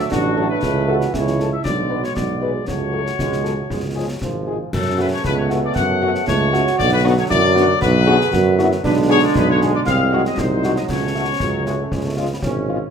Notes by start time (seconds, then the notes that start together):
Already playing: F#3 A3 F#4
0.11 A1 D4 F#4, concert bass drum, snare
0.36 F#3 F#4 A4
0.49 B4
0.62 C#2 E3 E4, concert bass drum, snare, crash
0.87 A3 E4 F#4 A4
1.01 snare
1.13 C#2 E4 C#5, concert bass drum, snare
1.27 snare
1.39 A3 E4 A4, snare
1.53 E5
1.64 B1 F#3 G#3 D4 D5, concert bass drum, snare
1.89 G#3 F#4 B4
2.04 C#5, snare
2.16 B1 F#4 D5, concert bass drum, snare
2.41 G#3 F#4 G#4 B4
2.67 C#2 A3 F#4 C#5, concert bass drum, snare
2.92 F#3 F#4 A4
3.06 snare
3.18 C#2 G#3, concert bass drum, snare
3.32 snare
3.44 F#3 F#4 A4, snare
3.58 A3
3.70 C#2 G#3, concert bass drum, snare
3.95 F3 G#3 F4 G#4
4.10 F#3
4.21 G#1 F3, concert bass drum, snare
4.47 G#3 F4 G#4
4.73 F#2 C#3 A3 C#4 A4, concert bass drum, snare, crash
4.98 A3 C#4 F#4 B4
5.12 C#5
5.24 C#2 B3 B4, concert bass drum, snare
5.37 C#5
5.50 A3 C#4 F#4, snare
5.64 D5
5.75 F#2 F#5, concert bass drum, snare
6.01 A3 C#4 F#4
6.15 snare
6.27 C#2 A3 C#5, concert bass drum, snare
6.53 A3 C#4 F#4, snare
6.67 snare
6.78 B1 D3 F#3 D5, concert bass drum, snare, crash
6.91 B4
7.04 B3 D4 F#4
7.18 C#5
7.30 F#2 E4 D5, concert bass drum, snare
7.55 B3 D4 F#4, snare
7.81 B1 F#4 B4, concert bass drum, snare
8.06 B3 D4 F#4 G#4
8.21 snare
8.32 F#2 F#4, concert bass drum, snare
8.58 B3 D4 E4 F#4, snare
8.72 snare
8.84 B1 D3 G#3 D4 B4, concert bass drum, snare, crash
9.09 B3 D4 G#4 C#5
9.24 D5
9.35 B1 B4, concert bass drum, snare
9.48 C#5
9.61 B3 D4 G#4, snare
9.74 D5
9.86 C2 F#3 C4 F5, concert bass drum, snare
10.12 G#3 D#4 F#4
10.25 D#5, snare
10.38 C2 D#4 C5, concert bass drum, snare
10.63 G#3 D#4 F#4, snare
10.76 D#5, snare
10.88 C#2 A3 C#4 C#5, concert bass drum, snare, crash
11.15 A3 C#4 F#4
11.40 C#2 F#3, concert bass drum, snare
11.66 G#3 A3 C#4 F#4, snare
11.79 A3
11.91 C#2 G#3, concert bass drum, snare
12.04 A3
12.17 G#3 C#4 F4
12.31 B3
12.42 G#1 C#4, concert bass drum, snare
12.69 G#3 C#4 F4